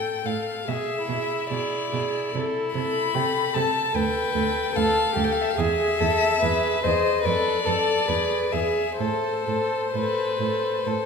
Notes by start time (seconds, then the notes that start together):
Already playing: A4 G5
0.25 A2 A4 F5
0.68 B2 G#4 E5
1.09 B2 E4 G#4
1.50 B2 G#4 D5
1.93 B2 G#4
2.34 C3 A4
2.74 C3 A4 B5
3.15 C3 G4 A4
3.55 C3 A4 A5
3.95 D2 A4 B4 G5
4.35 D2 A4
4.75 D2 A4 F5
5.15 D2 G4 A4
5.24 G5
5.32 F5
5.42 E5
5.50 F5
5.58 E2 G#4 E5
6.00 E2 G#4 A4
6.42 E2 G#4 B4
6.83 E2 G#4 C5 D#5
7.24 F2 A4 B4 D5
7.65 F2 A4
8.07 E2 G#4 B4
8.52 E2 G#4 E5
8.99 A2 A4 C5
9.47 A2 A4
9.94 A2 A4 B4
10.39 A2 A4
10.86 A2 A4